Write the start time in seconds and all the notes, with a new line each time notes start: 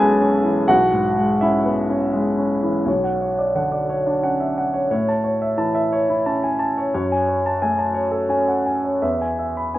Already playing: B1 E3 G#3 B3 C#4 G#4 A4 B4 G#5 A5 B5
0.20 C#4
0.44 E3
0.68 B1 F#4 F#5
0.93 G#2
1.17 G#3
1.41 C#4 E4 E5
1.65 B3
1.90 C#4
2.14 G#3
2.38 C#4
2.63 E3
2.85 B1 C#5
3.04 F#5
3.21 C#5
3.39 D5
3.55 D3 F#5
3.72 D5
3.89 C#5
4.06 D4
4.23 C#4 F#5
4.40 E5
4.58 F#5
4.73 C#5
4.91 A2 C#5
5.08 A5
5.24 C#5
5.42 E5
5.58 E3 A5
5.75 E5
5.92 C#5
6.09 E4
6.26 C#4 A5
6.44 G#5
6.59 A5
6.78 C#5
6.94 F#2 C#5
7.12 G#5
7.29 C#5
7.46 A5
7.62 A3 G#5
7.79 A5
7.94 C#5
8.11 A4
8.29 C#4 G#5
8.48 F#5
8.66 G#5
8.84 C#5
9.02 E2 E5
9.21 G#5
9.39 E5
9.57 B5
9.74 B3 G#5